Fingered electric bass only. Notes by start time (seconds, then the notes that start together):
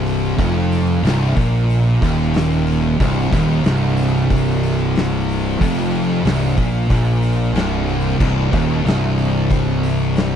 Already playing: C1
0.39 F1
1.03 C1
1.36 A#1
2.02 D#1
3.00 C1
3.32 D#1
3.64 C1
5.61 F1
6.25 C1
6.58 A#1
6.90 A#1
7.53 C1
8.21 C1
8.53 D#1
8.85 C1